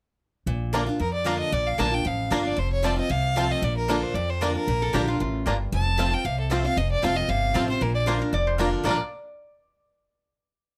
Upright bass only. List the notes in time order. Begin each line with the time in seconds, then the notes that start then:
0.46 A#1
1.00 F2
1.52 A#1
1.79 A#1
2.05 A1
2.31 G1
2.58 F1
3.10 C2
3.62 A#1
4.14 F2
4.67 A#1
4.94 A#1
5.20 A1
5.46 G1
5.72 F1
6.25 C2
6.77 F1
7.03 F1
7.28 G1
7.55 A1
7.81 A#1
8.33 F1
8.84 A#1